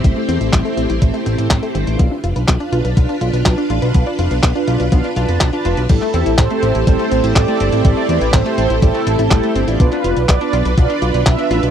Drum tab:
CC |----------------|----------------|----------------|x---------------|
HH |x-xxxxxxxxxxxxxx|x-xxxxxxxxxxxxxx|x-xxxxxxxxxxxxxx|x-xxxxxxxxxxxxxx|
CP |----x-------x---|----x-------x---|----x-------x---|-x--x-------x---|
BD |o---o---o---o---|o---o---o---o---|o---o---o---o---|o---o---o---o---|

CC |----------------|----------------|
HH |x-xxxxxxxxxxxxxx|x-xxxxxxxxxxxxxx|
CP |----x-------x---|-x--x-------x---|
BD |o---o---o---o---|o---o---o---o---|